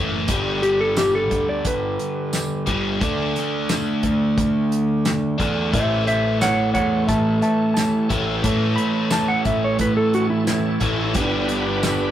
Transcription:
Already playing: F#1 A2 E3 A3
0.28 G1 G2 D3 G3, kick, closed hi-hat
0.62 G4, closed hi-hat
0.81 A4
0.97 G4, snare, closed hi-hat, tambourine
1.15 A4
1.31 D2, kick, closed hi-hat
1.49 D5
1.65 G1 B4, kick, closed hi-hat
1.99 closed hi-hat
2.33 snare, closed hi-hat, tambourine
2.66 G1 G2 D3 G3, kick, closed hi-hat
3.00 D2 D3 A3 D4, kick, closed hi-hat
3.36 snare, closed hi-hat
3.69 snare, closed hi-hat, tambourine
4.03 D2, kick, closed hi-hat
4.38 D2, kick, closed hi-hat
4.72 closed hi-hat
5.05 snare, closed hi-hat, tambourine
5.38 E2 D3 A3 D4, kick, closed hi-hat
5.72 A1 A2 E3 A3 C#4 E4 A4 C5 E5, kick, closed hi-hat
6.07 E3 C#4 E4 C5 E5, closed hi-hat
6.24 A3 C#4 E4
6.41 A2 E3 A3 C#4 E4 A4 C#5 F#5, snare, closed hi-hat, tambourine
6.58 A3 C#4 E4
6.74 E2 C#5 F#5, kick, closed hi-hat
7.07 A1 C#4 E4 A4 E5 A5, kick, closed hi-hat
7.26 A3 C#4 E4
7.42 E3 A3 C#4 E4 E5 A5, closed hi-hat
7.74 A2 E3 A3 C#4 E4 G4 A5, snare, closed hi-hat, tambourine
7.78 E4
8.09 A1 A2 E3 A3 C#4 E4, kick, closed hi-hat
8.27 A3 C#4 E4
8.42 A2 E3 A3 C#4 E4 A4, kick, closed hi-hat
8.76 E3 A3 C#4 E4 B5, closed hi-hat
8.94 A3 C#4 E4
9.11 A3 C#4 E4 A4 A5, snare, closed hi-hat, tambourine
9.28 A3 C#4 E4 F#5
9.45 A1 E5, kick, closed hi-hat
9.64 C#5
9.79 A1 C#4 E4 A4 B4, kick, closed hi-hat
9.96 A3 C#4 E4 A4
10.13 E3 A3 C#4 E4 F#4, closed hi-hat
10.30 E4
10.46 A2 E3 A3 C#4 E4 A4, snare, closed hi-hat, tambourine
10.64 A3 C#4 E4
10.80 A1 A2 E3 A3 C#4 E4, kick, closed hi-hat
10.98 A3 C#4
11.14 G1 G2 D3 G3 B3 D4 G4 B4, kick, closed hi-hat
11.48 G3 B3 D4 G4, snare, closed hi-hat
11.65 G3 B3 D4 G4
11.82 G2 D3 G3 B3 D4 G4 B4, snare, closed hi-hat, tambourine
12.00 G3 B3 D4 G4

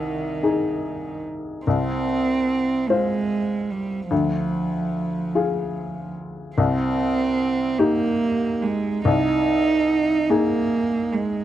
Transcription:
Already playing: C2 D#3
0.43 D#4 G#4
1.66 C2 C4
2.88 G#3 F4 C5
3.70 G3
4.10 D2 F3
5.35 F4 G#4
6.56 C2 C4
7.78 A#3 D#4 G4
8.62 G#3
9.05 C2 D#4
10.29 A#3 D#4 G#4
11.12 G#3

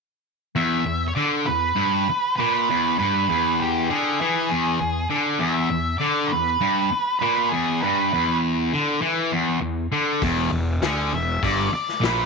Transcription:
0.56 E2 E5
0.86 E2
1.08 C#5
1.15 D3 D5
1.46 E2 B4
1.76 G2
2.09 muted distorted electric guitar stroke
2.36 A#2 B4
2.70 E2
2.99 G2 B4
3.29 E2
3.60 G4
3.90 D3 G#4
4.21 E3
4.49 E2
4.81 E2
5.10 D3
5.39 E2 E5
5.71 E2
5.98 D3 D5
6.28 B4
6.32 E2
6.61 G2
6.92 muted distorted electric guitar stroke
7.19 A#2 B4
7.49 E2 G#4
7.81 G2 B4
8.14 E2
8.73 D3
9.02 E3
9.32 E2
9.61 E2
9.92 D3
10.22 E1 E2, kick, open hi-hat
10.52 E1 E2
10.82 D2 D3 G#4, snare, open hi-hat
11.12 E1 E2 E5
11.43 G1 G2 D5, kick, open hi-hat
11.73 D5, muted distorted electric guitar stroke, muted fingered electric bass stroke
11.89 snare
12.01 A#1 A#2 B4, snare, open hi-hat

